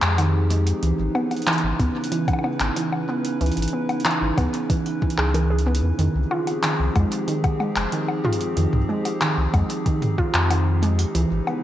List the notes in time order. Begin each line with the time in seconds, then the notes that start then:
Already playing: F3 C4 D#4 G4 G#4
0.02 F2, clap, closed hi-hat
0.18 D#3, closed hi-hat, high bongo
0.50 G#3, closed hi-hat
0.67 closed hi-hat
0.83 C#2 C#3 E3 C#4 E4 B4, closed hi-hat
0.99 G#1
1.15 B3, high bongo
1.31 closed hi-hat, high bongo
1.37 closed hi-hat
1.42 closed hi-hat
1.47 E3, clap, closed hi-hat
1.53 closed hi-hat
1.58 closed hi-hat
1.63 G#1
1.80 C#2 B3, kick, closed hi-hat
2.04 closed hi-hat
2.12 E3, closed hi-hat
2.28 kick, closed hi-hat, high bongo
2.33 high bongo
2.39 high bongo
2.44 B3, high bongo
2.60 G#1, clap, closed hi-hat
2.76 E3, closed hi-hat
2.92 high bongo
3.09 B3
3.25 closed hi-hat
3.41 C#2 E3, closed hi-hat
3.46 closed hi-hat
3.52 closed hi-hat
3.57 G#1, closed hi-hat
3.62 closed hi-hat
3.68 closed hi-hat
3.73 B3
3.89 closed hi-hat, high bongo
4.00 closed hi-hat
4.05 E3, clap, closed hi-hat
4.11 closed hi-hat
4.21 G#1
4.38 C#2 B3, kick, closed hi-hat, high bongo
4.54 closed hi-hat
4.70 E3, kick, closed hi-hat
4.86 closed hi-hat
5.02 E3, kick
5.10 closed hi-hat
5.18 C#2 G#4, clap
5.34 E3, closed hi-hat, high bongo
5.50 G#4
5.59 closed hi-hat
5.66 B3
5.75 closed hi-hat
5.83 E2
5.99 F2 D#3 F3 C4 D#4 G4 G#4, closed hi-hat
6.15 C2
6.31 F4, high bongo
6.47 closed hi-hat, high bongo
6.63 D#3, clap, closed hi-hat
6.79 C2
6.96 F2 G#3, kick, closed hi-hat, high bongo
7.12 closed hi-hat
7.28 D#3, closed hi-hat
7.44 kick, closed hi-hat, high bongo
7.60 G#3, high bongo
7.76 F1, clap, closed hi-hat
7.92 D#3, closed hi-hat
8.08 high bongo
8.25 F4, mid tom
8.33 closed hi-hat
8.41 closed hi-hat
8.57 F2 D#3, closed hi-hat
8.73 C2, mid tom
8.89 G#3
9.05 closed hi-hat, high bongo
9.21 D#3, clap, closed hi-hat
9.37 C2
9.54 F2 G#3, kick, closed hi-hat, high bongo
9.70 closed hi-hat
9.86 D#3, kick, closed hi-hat
10.02 closed hi-hat, mid tom
10.18 F4, kick
10.34 F2, clap, closed hi-hat
10.50 D#3, closed hi-hat, high bongo
10.83 G#3, closed hi-hat
10.99 closed hi-hat
11.15 C#2 C#3 E3 C#4 E4 B4, closed hi-hat
11.31 G#1
11.47 B3, high bongo